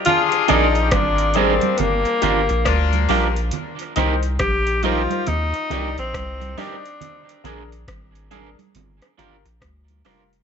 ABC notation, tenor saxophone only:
X:1
M:4/4
L:1/16
Q:"Swing 16ths" 1/4=69
K:Bbmix
V:1 name="Tenor saxophone"
F2 E2 D2 C2 B,6 z2 | z4 G2 F2 E3 C3 D2- | D2 z12 z2 |]